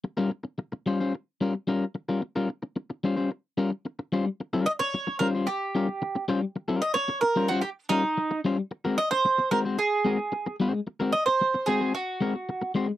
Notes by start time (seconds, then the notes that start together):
0.04 muted clean electric guitar stroke
0.17 G3 C#4 F4 A#4
0.31 muted clean electric guitar stroke
0.44 muted clean electric guitar stroke
0.58 muted clean electric guitar stroke
0.72 muted clean electric guitar stroke
0.86 G3 C#4 F4 C5
1.00 G3 C#4 F4 C5
1.14 muted clean electric guitar stroke
1.41 G3 C#4 F4 A#4
1.54 muted clean electric guitar stroke
1.67 G3 C#4 F4 A#4
1.95 muted clean electric guitar stroke
2.09 G3 C#4 F4 A#4
2.22 muted clean electric guitar stroke
2.36 G3 C#4 F4 A#4
2.49 muted clean electric guitar stroke
2.63 muted clean electric guitar stroke
2.76 muted clean electric guitar stroke
2.90 muted clean electric guitar stroke
3.04 G3 C#4 F4 C5
3.16 G3 C#4 F4 C5
3.31 muted clean electric guitar stroke
3.58 G3 C#4 F4 A#4
3.71 muted clean electric guitar stroke
3.85 muted clean electric guitar stroke
3.99 muted clean electric guitar stroke
4.12 G3 C#4 F4 C5
4.26 muted clean electric guitar stroke
4.40 muted clean electric guitar stroke
4.53 G3 C#4 F4 A#4
4.66 D#5, muted clean electric guitar stroke
4.79 C#5, muted clean electric guitar stroke
4.94 muted clean electric guitar stroke
5.07 muted clean electric guitar stroke
5.19 G3 C#4 F4 A#4 C5
5.34 G3 C#4 F4 C5
5.47 G4, muted clean electric guitar stroke
5.75 G3 C#4 F4 A#4
5.88 muted clean electric guitar stroke
6.02 muted clean electric guitar stroke
6.15 muted clean electric guitar stroke
6.28 G3 C#4 F4 C5
6.42 muted clean electric guitar stroke
6.56 muted clean electric guitar stroke
6.68 G3 C#4 F4 A#4
6.82 D#5, muted clean electric guitar stroke
6.94 C#5, muted clean electric guitar stroke
7.08 muted clean electric guitar stroke
7.21 A#4, muted clean electric guitar stroke
7.36 G3 C#4 F4 C5
7.48 G3 C#4 F4 F#4 C5
7.61 G4, muted clean electric guitar stroke
7.89 G3 C#4 D#4 F4 A#4
8.04 muted clean electric guitar stroke
8.18 muted clean electric guitar stroke
8.31 muted clean electric guitar stroke
8.45 G3 C#4 F4 C5
8.58 muted clean electric guitar stroke
8.71 muted clean electric guitar stroke
8.85 G#3 C4 F#4 A#4
8.98 D#5, muted clean electric guitar stroke
9.11 C5, muted clean electric guitar stroke
9.25 muted clean electric guitar stroke
9.38 muted clean electric guitar stroke
9.51 G#3 C4 F#4 A#4 C5
9.65 G#3 C4 F#4 C5
9.78 G#4, muted clean electric guitar stroke
10.05 G#3 C4 F#4 A#4
10.19 muted clean electric guitar stroke
10.32 muted clean electric guitar stroke
10.46 muted clean electric guitar stroke
10.60 G#3 C4 F#4 C5
10.74 muted clean electric guitar stroke
10.87 muted clean electric guitar stroke
11.00 G#3 C4 F#4 A#4
11.12 D#5, muted clean electric guitar stroke
11.26 C5, muted clean electric guitar stroke
11.41 muted clean electric guitar stroke
11.54 muted clean electric guitar stroke
11.66 G#3 C4 F#4 G#4 C5
11.81 G#3 C4 F#4 C5
11.94 F#4, muted clean electric guitar stroke
12.21 G#3 C4 F#4 A#4
12.35 muted clean electric guitar stroke
12.49 muted clean electric guitar stroke
12.62 muted clean electric guitar stroke
12.75 G#3 C4 F#4 C5
12.88 muted clean electric guitar stroke